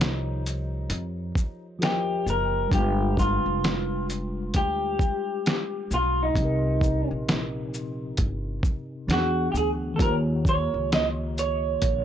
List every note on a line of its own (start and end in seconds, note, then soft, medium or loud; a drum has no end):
0.00 0.86 C2 medium
0.00 1.75 F3 medium
0.00 1.76 F4 medium
0.00 1.77 G4 medium
0.00 1.78 A#4 medium
0.00 1.80 C5 medium
0.00 1.81 C#5 medium
0.00 snare loud
0.00 closed hi-hat medium
0.46 closed hi-hat soft
0.46 shaker soft
0.90 1.31 F2 medium
0.90 closed hi-hat medium
1.35 kick medium
1.35 shaker soft
1.79 2.71 F3 soft
1.79 2.71 F4 soft
1.79 2.72 G4 soft
1.79 2.73 A#4 soft
1.79 closed hi-hat medium
1.83 2.29 G4 medium
1.83 2.73 C5 soft
1.83 2.74 D#5 medium
1.83 snare loud
2.26 2.67 F#1 medium
2.26 2.73 A#4 medium
2.26 shaker soft
2.68 3.39 G1 loud
2.68 6.30 G3 medium
2.68 6.31 D4 medium
2.68 kick loud
2.73 6.34 G#3 medium
2.73 6.33 F4 medium
2.73 3.19 G4 medium
2.73 closed hi-hat medium
2.79 6.35 B4 medium
3.17 4.05 F4 medium
3.17 kick medium
3.17 shaker soft
3.46 4.50 F1 medium
3.64 snare loud
3.64 closed hi-hat medium
4.10 closed hi-hat soft
4.10 shaker soft
4.54 4.95 D2 medium
4.54 5.94 G4 loud
4.54 kick medium
4.54 closed hi-hat medium
4.99 kick medium
4.99 shaker soft
5.46 snare loud
5.46 closed hi-hat medium
5.91 6.31 B1 medium
5.91 6.22 F4 medium
5.91 shaker soft
6.23 7.08 D#4 medium
6.34 7.02 C2 loud
6.34 9.04 C3 medium
6.34 9.05 C4 soft
6.34 kick loud
6.34 closed hi-hat medium
6.39 9.06 D#4 medium
6.39 9.08 G4 medium
6.45 9.09 A#4 medium
6.81 kick medium
6.81 shaker soft
7.11 8.14 A#1 medium
7.29 snare loud
7.29 closed hi-hat medium
7.74 shaker soft
8.17 8.59 G1 medium
8.17 kick medium
8.17 closed hi-hat medium
8.63 kick medium
8.63 shaker soft
9.08 9.49 E2 medium
9.08 9.99 E3 medium
9.08 10.00 B3 medium
9.08 10.00 D4 medium
9.08 snare loud
9.08 closed hi-hat medium
9.12 10.01 F#4 medium
9.12 9.48 F#4 medium
9.12 10.02 G#4 medium
9.52 9.95 D2 medium
9.52 9.55 G4 medium
9.52 shaker soft
9.57 9.68 G#4 medium
9.94 12.04 D#3 medium
9.94 12.04 A#3 medium
9.94 10.00 A4 medium
9.99 10.66 D#2 loud
9.99 12.04 F4 medium
9.99 12.04 G4 soft
9.99 10.14 A#4 medium
9.99 kick loud
9.99 closed hi-hat medium
10.05 10.11 C5 medium
10.12 12.04 C#5 medium
10.45 10.93 C#5 medium
10.45 kick medium
10.45 shaker soft
10.74 11.77 C#2 medium
10.92 11.06 D#5 loud
10.92 snare loud
10.92 closed hi-hat medium
11.38 12.04 C#5 medium
11.38 closed hi-hat soft
11.38 shaker soft
11.82 12.04 A#1 medium
11.82 kick medium
11.82 closed hi-hat medium